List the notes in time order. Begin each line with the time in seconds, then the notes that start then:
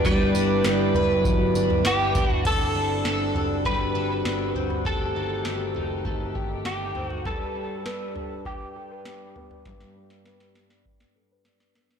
Already playing: G3 B3 D4 B4 D5
0.04 G1 G3 E4 B4, kick, floor tom, tambourine
0.35 G1 D4, tambourine
0.64 G1 B3, snare, tambourine
0.95 F#1 B4, floor tom
1.18 F#3
1.24 G1 E4, kick, floor tom, tambourine
1.54 G1 D4, tambourine
1.70 floor tom
1.84 G1 B3 G4, snare, tambourine
2.15 G1 D4, kick, floor tom, tambourine
2.30 F#4, floor tom
2.45 G1 G3 C4 D4 F#4 A4, kick, floor tom, crash
2.75 G1 D4
3.05 G1 A4, snare
3.35 F#1 D4, floor tom
3.65 G1 G3 B4, kick, floor tom
3.95 G1 A4
4.25 G1 D4, snare
4.55 G1 C4, floor tom
4.70 floor tom
4.85 G1 D#3 A3 G4 A4, kick, floor tom
5.15 G1 D#4
5.45 G1 G4, snare
5.75 F#1 D#4, floor tom
6.05 G1 A3, kick, floor tom
6.35 G1 G4, kick
6.65 G1 D#4 G4, snare
6.95 G1 C4, floor tom
7.10 F#4, floor tom
7.25 G2 G3 D4 G4 A4 B4, kick, floor tom
7.55 D4
7.85 B4, snare
8.15 D4, floor tom
8.45 G4, kick, floor tom
8.75 A4
8.91 B4
9.05 D4, snare
9.36 B3, floor tom
9.51 floor tom
9.65 G2 B4, kick, snare
9.80 snare
9.96 D4
10.10 snare
10.26 B4, snare
10.40 snare
10.55 D4, snare
10.70 snare
10.85 kick
11.00 snare
11.16 A4
11.31 B4
11.45 D4, snare
11.60 snare
11.75 B3, snare
11.91 snare